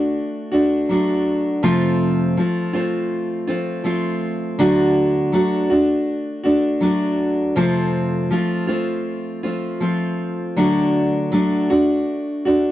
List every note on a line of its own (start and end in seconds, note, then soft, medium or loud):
0.00 0.54 A3 soft
0.00 0.52 D4 soft
0.00 0.50 F#4 medium
0.52 0.89 A3 soft
0.52 0.89 D4 medium
0.52 0.89 F#4 medium
0.89 1.63 F#3 medium
0.89 1.63 A3 medium
0.89 1.63 D4 medium
0.89 1.63 F#4 medium
1.63 2.37 F2 medium
1.63 2.37 C3 medium
1.63 2.36 F3 medium
1.63 2.38 A3 medium
1.63 2.38 C4 medium
1.63 2.38 F4 medium
2.37 2.74 F3 medium
2.37 2.74 A3 medium
2.37 2.73 C4 medium
2.37 2.72 F4 medium
2.73 3.49 F3 soft
2.73 3.49 A3 medium
2.73 3.47 C4 soft
2.73 3.46 F4 medium
3.47 3.83 F3 soft
3.47 3.83 A3 soft
3.47 3.84 C4 medium
3.47 3.85 F4 medium
3.84 4.58 F3 medium
3.84 4.59 A3 medium
3.84 4.59 C4 medium
3.84 4.60 F4 medium
4.59 5.33 D3 medium
4.59 5.31 F#3 medium
4.59 5.33 A3 medium
4.59 5.33 D4 medium
4.59 5.33 F#4 loud
5.32 5.69 F#3 medium
5.32 5.70 A3 medium
5.32 5.70 D4 medium
5.32 5.69 F#4 medium
5.70 6.45 A3 soft
5.70 6.44 D4 medium
5.70 6.42 F#4 medium
6.43 6.81 A3 soft
6.43 6.81 D4 medium
6.43 6.81 F#4 medium
6.81 7.56 F#3 medium
6.81 7.56 A3 medium
6.81 7.56 D4 medium
6.81 7.57 F#4 medium
7.56 8.31 F2 medium
7.56 8.31 C3 medium
7.56 8.29 F3 medium
7.56 8.31 A3 medium
7.56 8.31 C4 medium
7.56 8.31 F4 medium
8.30 8.68 F3 medium
8.30 8.68 A3 medium
8.30 8.67 C4 medium
8.30 8.66 F4 medium
8.67 9.44 F3 soft
8.67 9.44 A3 medium
8.67 9.43 C4 medium
8.67 9.42 F4 medium
9.43 9.79 F3 soft
9.43 9.80 A3 soft
9.43 9.81 C4 soft
9.43 9.81 F4 medium
9.80 10.57 F3 medium
9.80 10.57 A3 medium
9.80 10.57 C4 medium
9.80 10.58 F4 medium
10.56 11.33 D3 medium
10.56 11.30 F#3 medium
10.56 11.32 A3 medium
10.56 11.32 D4 medium
10.56 11.33 F#4 medium
11.32 11.70 F#3 medium
11.32 11.70 A3 medium
11.32 11.70 D4 medium
11.32 11.69 F#4 medium
11.70 12.47 A3 soft
11.70 12.45 D4 medium
11.70 12.44 F#4 medium
12.45 12.72 A3 soft
12.45 12.72 D4 medium
12.45 12.72 F#4 medium